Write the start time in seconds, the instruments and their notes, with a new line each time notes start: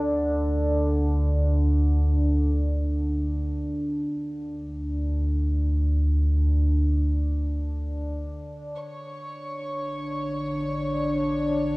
Already playing: analog synth bass D2, synth drone D3 D4
4.15 analog synth bass D2
8.80 analog synth bass A1, synth drone D3 D4, violin section C#5 C#6